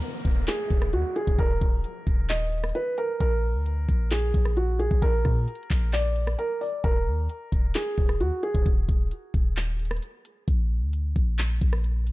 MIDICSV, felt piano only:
0, 0, Header, 1, 2, 480
1, 0, Start_track
1, 0, Key_signature, -6, "minor"
1, 0, Tempo, 454545
1, 1464, Time_signature, 4, 2, 24, 8
1, 12801, End_track
2, 0, Start_track
2, 0, Title_t, "Felt piano"
2, 0, Program_c, 0, 0
2, 0, Note_on_c, 0, 70, 98
2, 462, Note_off_c, 0, 70, 0
2, 506, Note_on_c, 0, 68, 85
2, 956, Note_off_c, 0, 68, 0
2, 984, Note_on_c, 0, 66, 87
2, 1208, Note_off_c, 0, 66, 0
2, 1224, Note_on_c, 0, 68, 85
2, 1448, Note_off_c, 0, 68, 0
2, 1466, Note_on_c, 0, 70, 103
2, 2383, Note_off_c, 0, 70, 0
2, 2425, Note_on_c, 0, 75, 86
2, 2876, Note_off_c, 0, 75, 0
2, 2904, Note_on_c, 0, 71, 90
2, 3128, Note_off_c, 0, 71, 0
2, 3145, Note_on_c, 0, 70, 84
2, 3368, Note_off_c, 0, 70, 0
2, 3384, Note_on_c, 0, 70, 98
2, 4302, Note_off_c, 0, 70, 0
2, 4344, Note_on_c, 0, 68, 87
2, 4795, Note_off_c, 0, 68, 0
2, 4823, Note_on_c, 0, 66, 89
2, 5048, Note_off_c, 0, 66, 0
2, 5061, Note_on_c, 0, 68, 84
2, 5287, Note_off_c, 0, 68, 0
2, 5301, Note_on_c, 0, 70, 104
2, 6220, Note_off_c, 0, 70, 0
2, 6265, Note_on_c, 0, 74, 91
2, 6716, Note_off_c, 0, 74, 0
2, 6743, Note_on_c, 0, 70, 83
2, 6968, Note_off_c, 0, 70, 0
2, 6980, Note_on_c, 0, 74, 76
2, 7206, Note_off_c, 0, 74, 0
2, 7222, Note_on_c, 0, 70, 97
2, 8141, Note_off_c, 0, 70, 0
2, 8185, Note_on_c, 0, 68, 87
2, 8636, Note_off_c, 0, 68, 0
2, 8663, Note_on_c, 0, 66, 85
2, 8888, Note_off_c, 0, 66, 0
2, 8903, Note_on_c, 0, 68, 85
2, 9127, Note_off_c, 0, 68, 0
2, 12801, End_track
0, 0, End_of_file